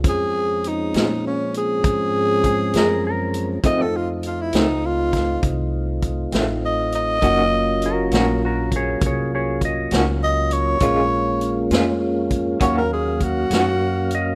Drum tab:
HH |x-xx-xx-xx-x|x-xx-xx-xx-x|x-xx-xx-xx-x|x-xx-xx-xx-x|
SD |---o-----o--|---o-o---o--|---o-----o--|---o-----o--|
BD |o-----o-o---|o----oo-o---|o----oo-o---|o----oo-o---|